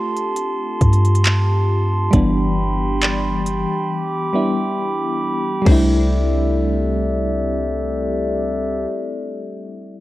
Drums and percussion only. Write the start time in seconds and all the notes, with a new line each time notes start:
0.17 closed hi-hat
0.36 closed hi-hat
0.81 kick, closed hi-hat
0.93 closed hi-hat
1.05 closed hi-hat
1.15 closed hi-hat
1.25 clap, closed hi-hat
2.13 kick, closed hi-hat
3.01 clap, closed hi-hat
3.46 closed hi-hat
5.67 kick, crash